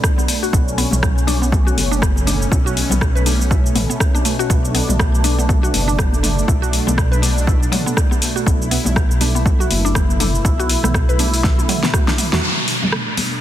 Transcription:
Already playing: analog synth pad B2 A3 D4
0.04 kick, cross-stick, cabasa
0.18 synth arpeggio sound B3, high conga, cabasa
0.28 open hi-hat, cabasa
0.43 synth arpeggio sound F#4, cabasa
0.53 detuned saw bass B1, synth arpeggio sound B3, analog synth pad C#4, kick, cabasa
0.68 cabasa
0.78 synth arpeggio sound B3, open hi-hat, cabasa
0.91 detuned saw bass B1, mid tom, high conga, low conga, cabasa
1.03 synth arpeggio sound F#3, kick, cross-stick, cabasa
1.18 cabasa
1.27 synth arpeggio sound D4, open hi-hat, high conga, low conga, cabasa
1.42 synth arpeggio sound B3, cabasa
1.52 kick, high conga, low conga, cabasa
1.67 synth arpeggio sound F#4, cabasa
1.77 detuned saw bass F#1, open hi-hat, high conga, cabasa
1.91 synth arpeggio sound D4, cabasa
2.02 synth arpeggio sound F#3, kick, cross-stick, high conga, cabasa
2.16 high conga, cabasa
2.27 synth arpeggio sound D4, mid tom, open hi-hat, cabasa
2.42 cabasa
2.52 detuned saw bass B1, synth arpeggio sound E4, kick, cabasa
2.66 synth arpeggio sound F#4, cabasa
2.77 open hi-hat, cabasa
2.90 detuned saw bass B1, synth arpeggio sound B3, mid tom, high conga, low conga, cabasa
3.01 kick, cross-stick, cabasa
3.15 synth arpeggio sound B4, cabasa
3.26 synth arpeggio sound D4, open hi-hat, high conga, low conga, cabasa
3.41 cabasa
3.51 synth arpeggio sound E4, kick, cabasa
3.66 cabasa
3.75 detuned saw bass A1, synth arpeggio sound B3, mid tom, open hi-hat, high conga, cabasa
3.90 synth arpeggio sound B3, high conga, cabasa
4.00 kick, cross-stick, cabasa
4.14 synth arpeggio sound D4, high conga, cabasa
4.25 synth arpeggio sound A3, open hi-hat, cabasa
4.39 synth arpeggio sound F#4, cabasa
4.50 detuned saw bass B1, synth arpeggio sound B3, analog synth pad D4, kick, cabasa
4.65 cabasa
4.75 synth arpeggio sound B3, open hi-hat, cabasa
4.88 detuned saw bass B1, mid tom, high conga, low conga, cabasa
5.00 synth arpeggio sound F#3, kick, cross-stick, cabasa
5.15 cabasa
5.24 synth arpeggio sound D4, open hi-hat, high conga, low conga, cabasa
5.39 synth arpeggio sound B3, cabasa
5.49 kick, high conga, low conga, cabasa
5.63 synth arpeggio sound F#4, cabasa
5.74 detuned saw bass F#1, open hi-hat, high conga, cabasa
5.88 synth arpeggio sound D4, cabasa
5.98 synth arpeggio sound F#3, kick, cross-stick, high conga, cabasa
6.12 high conga, cabasa
6.23 synth arpeggio sound D4, mid tom, open hi-hat, cabasa
6.39 cabasa
6.48 detuned saw bass B1, synth arpeggio sound E4, kick, cabasa
6.62 synth arpeggio sound F#4, cabasa
6.73 open hi-hat, cabasa
6.87 detuned saw bass B1, synth arpeggio sound B3, mid tom, high conga, low conga, cabasa
6.98 kick, cross-stick, cabasa
7.12 synth arpeggio sound B4, cabasa
7.22 synth arpeggio sound D4, open hi-hat, high conga, low conga, cabasa
7.38 cabasa
7.47 synth arpeggio sound E4, kick, cabasa
7.63 cabasa
7.72 synth arpeggio sound F#3, mid tom, open hi-hat, high conga, cabasa
7.86 synth arpeggio sound B3, high conga, cabasa
7.97 kick, cross-stick, cabasa
8.11 synth arpeggio sound B3, high conga, cabasa
8.22 open hi-hat, cabasa
8.36 synth arpeggio sound F#4, cabasa
8.46 detuned saw bass B1, synth arpeggio sound B3, analog synth pad E4, kick, cabasa
8.62 cabasa
8.71 synth arpeggio sound B3, open hi-hat, cabasa
8.85 detuned saw bass B1, mid tom, high conga, low conga, cabasa
8.96 synth arpeggio sound F#3, kick, cross-stick, cabasa
9.11 cabasa
9.21 synth arpeggio sound D4, open hi-hat, high conga, low conga, cabasa
9.35 synth arpeggio sound B3, cabasa
9.45 kick, high conga, low conga, cabasa
9.60 synth arpeggio sound F#4, cabasa
9.71 detuned saw bass F#1, open hi-hat, high conga, cabasa
9.85 synth arpeggio sound D4, cabasa
9.95 synth arpeggio sound F#3, kick, cross-stick, high conga, cabasa
10.09 high conga, cabasa
10.20 synth arpeggio sound D4, mid tom, open hi-hat, cabasa
10.35 cabasa
10.45 detuned saw bass B1, synth arpeggio sound E4, kick, cabasa
10.60 synth arpeggio sound F#4, cabasa
10.69 open hi-hat, cabasa
10.83 detuned saw bass B1, synth arpeggio sound B3, cross-stick, mid tom, high conga, low conga, cabasa
10.94 kick, cross-stick, cabasa
11.09 synth arpeggio sound B4, cabasa
11.19 synth arpeggio sound D4, open hi-hat, high conga, low conga, cabasa
11.34 open hi-hat, cabasa
11.44 synth arpeggio sound E4, kick, snare, cabasa
11.58 high tom, high conga, cabasa
11.68 synth arpeggio sound F#3, mid tom, open hi-hat, high conga, cabasa
11.83 synth arpeggio sound B3, snare, high conga, cabasa
11.94 synth arpeggio sound F#4, kick, cross-stick, mid tom, cabasa
12.07 synth arpeggio sound D4, snare, high conga, cabasa
12.18 mid tom, open hi-hat, cabasa
12.33 detuned saw bass E2, synth arpeggio sound F#4, snare, cabasa
12.43 analog synth pad B2 A3 D4, downlifter
12.68 open hi-hat
12.82 mid tom, high conga, low conga
12.92 cross-stick
13.17 open hi-hat, high conga, low conga

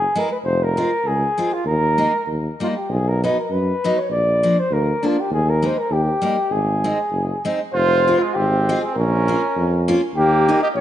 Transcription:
Already playing: flugelhorn G#4
0.16 steel-string acoustic guitar G#3 B3 E4, flugelhorn A#4
0.32 flugelhorn B4
0.44 tuba F1, flugelhorn C5
0.64 flugelhorn A#4
0.77 steel-string acoustic guitar G#3 C4 F4
1.05 tuba C#2, flugelhorn G#4
1.38 steel-string acoustic guitar G#3 C4 F4
1.53 flugelhorn F4
1.65 tuba D#2, flugelhorn A#4
1.98 steel-string acoustic guitar G#3 A#3 D#4
2.27 tuba D#2
2.60 steel-string acoustic guitar G3 A#3 D#4, flugelhorn F4
2.76 flugelhorn G4
2.89 tuba B1, flugelhorn G#4
3.09 flugelhorn A#4
3.24 steel-string acoustic guitar F#3 B3 D#4, flugelhorn B4
3.40 flugelhorn A#4
3.51 tuba F#2, flugelhorn B4
3.84 steel-string acoustic guitar F#3 B3 D#4
3.98 flugelhorn C#5
4.10 tuba A#1, flugelhorn D5
4.43 steel-string acoustic guitar F3 A#3 D4
4.59 flugelhorn C5
4.70 tuba D2, flugelhorn A#4
5.03 steel-string acoustic guitar F3 A#3 D4, flugelhorn F4
5.20 flugelhorn G4
5.31 tuba D#2, flugelhorn G#4
5.49 flugelhorn A#4
5.62 steel-string acoustic guitar G#3 A#3 D#4, flugelhorn C5
5.78 flugelhorn A#4
5.90 tuba D#2, flugelhorn G4
6.22 steel-string acoustic guitar G3 A#3 D#4
6.50 tuba G#1, flugelhorn G#4
6.84 steel-string acoustic guitar G#3 C4 D#4
7.11 tuba F#1
7.45 steel-string acoustic guitar G#3 C4 D#4
7.73 tuba F1, trumpet F4, flugelhorn C5
8.08 steel-string acoustic guitar G#3 C4 F4
8.19 trumpet G#3, flugelhorn F4
8.34 tuba G#1, trumpet C4, flugelhorn G4
8.69 steel-string acoustic guitar G#3 C4 F4
8.81 trumpet C4, flugelhorn G#4
8.94 tuba A#1, flugelhorn A#4
8.98 trumpet C#4
9.28 steel-string acoustic guitar A#3 C#4 F4
9.56 tuba F2
9.88 steel-string acoustic guitar A#3 C#4 F4
10.14 tuba D#2, flugelhorn G4
10.19 trumpet A#3
10.48 steel-string acoustic guitar G3 A#3 D#4
10.62 trumpet G4, flugelhorn D#5
10.75 tuba A#1, flugelhorn C#5

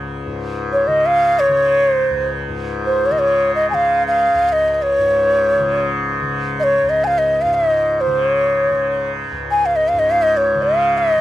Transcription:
Already playing: tanpura C#2 G#2 C#3
0.26 tanpura G#2
0.73 bansuri C#5
0.87 tanpura C#3, bansuri D#5
1.06 bansuri F5
1.39 bansuri C#5
1.49 tanpura C#3
1.90 bansuri C5
2.10 tanpura C#2
2.48 tanpura G#2
2.86 bansuri C5
3.06 bansuri C#5
3.10 tanpura C#3, bansuri D#5
3.19 bansuri C#5
3.55 bansuri D#5
3.70 tanpura C#3, bansuri G#5
3.74 bansuri F5
4.08 bansuri F5
4.34 tanpura C#2
4.49 bansuri D#5 F5
4.74 bansuri D#5
4.82 bansuri C#5
4.99 tanpura G#2
5.59 tanpura C#3
6.21 tanpura C#3
6.60 bansuri C#5 D#5
6.83 tanpura C#2
6.89 bansuri D#5
7.04 bansuri F5 G#5
7.18 bansuri D#5
7.41 tanpura G#2, bansuri F5
7.54 bansuri E5
7.69 bansuri D#5
8.01 bansuri C5
8.06 tanpura C#3
8.28 bansuri C#5
8.69 tanpura C#3
9.31 tanpura C#2
9.51 bansuri G#5
9.66 bansuri F5
9.76 bansuri D#5
9.88 bansuri F5
9.93 tanpura G#2
9.99 bansuri D#5
10.11 bansuri F5
10.22 bansuri D#5
10.37 bansuri C#5
10.54 tanpura C#3
10.63 bansuri F5
10.98 bansuri D#5
11.17 tanpura C#3

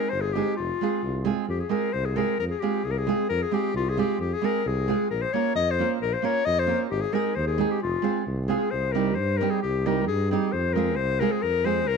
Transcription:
Already playing: clarinet A#4
0.10 tuba G1, clarinet C5
0.22 clarinet G#4
0.33 nylon-string guitar G#3 C4 D#4, clarinet G4
0.37 nylon-string guitar G#4
0.57 tuba F1, clarinet F4
0.81 nylon-string guitar G#3 C4 F4 G#4
1.03 tuba C2
1.25 nylon-string guitar G#3 C4 F4 G#4
1.48 tuba F2, clarinet G4
1.60 clarinet G#4
1.69 nylon-string guitar G#3 C4 F4 G#4, clarinet A#4
1.93 tuba C2, clarinet C5
2.05 clarinet G#4
2.16 nylon-string guitar G#3 C4 F4 G#4, clarinet A#4
2.39 tuba F2, clarinet A#4
2.51 clarinet G#4
2.60 nylon-string guitar G#3 C4 F4 G#4, clarinet G4
2.84 tuba C2, clarinet G#4
2.91 clarinet A#4
2.98 clarinet G#4
3.07 nylon-string guitar G#3 C4 F4 G#4
3.29 tuba F2, clarinet A#4
3.42 clarinet G#4
3.51 nylon-string guitar G#3 C4 F4 G#4, clarinet G4
3.74 tuba C2, clarinet F4
3.89 clarinet G#4
3.97 nylon-string guitar G#3 C4 F4 G#4, clarinet G4
4.19 tuba F2, clarinet G4
4.33 clarinet G#4
4.42 nylon-string guitar G#3 C4 F4 G#4, clarinet A#4
4.66 tuba C2, clarinet G#4
4.88 nylon-string guitar G#3 C4 F4 G#4
5.10 tuba A#1, clarinet A#4
5.22 clarinet C5
5.33 nylon-string guitar A#3 C#4 F4 A#4, clarinet C#5
5.55 tuba F2, clarinet D#5
5.71 clarinet C5
5.79 nylon-string guitar A#3 C#4 F4 A#4
6.01 tuba A#1, clarinet A#4
6.13 clarinet C5
6.22 nylon-string guitar A#3 C#4 F4 A#4, clarinet C#5
6.45 tuba F2, clarinet D#5
6.59 clarinet C5
6.67 nylon-string guitar A#3 C#4 F4 A#4
6.91 tuba G#1, clarinet G4
7.01 clarinet G#4
7.12 nylon-string guitar G#3 C4 D#4 G#4, clarinet A#4
7.36 tuba D#2, clarinet C5
7.47 clarinet G#4
7.58 nylon-string guitar G#3 C4 D#4 G#4
7.71 clarinet G4
7.82 tuba F1, clarinet F4
8.02 nylon-string guitar G#3 C4 F4 G#4
8.26 tuba C2
8.48 nylon-string guitar G#3 C4 F4 G#4, clarinet G#4
8.71 tuba C2, clarinet C5
8.92 nylon-string guitar G3 C4 D#4 G4, clarinet A#4
9.15 tuba G2, clarinet C5
9.38 nylon-string guitar G3 C4, clarinet A#4
9.42 nylon-string guitar D#4 G4
9.50 clarinet G#4
9.62 tuba C2, clarinet G4
9.86 nylon-string guitar G3 C4 D#4 G4, clarinet A#4
10.07 tuba G2, clarinet G#4
10.31 nylon-string guitar G3 C4 D#4 G4, clarinet G#4
10.52 tuba F2, clarinet C5
10.74 nylon-string guitar G#3 C4 F4 G#4, clarinet A#4
10.96 tuba C2, clarinet C5
11.20 nylon-string guitar G#3 C4 F4 G#4, clarinet A#4
11.31 clarinet G#4
11.42 tuba F2, clarinet A#4
11.64 nylon-string guitar G#3 C4 F4 G#4, clarinet C5
11.88 tuba C2, clarinet A#4

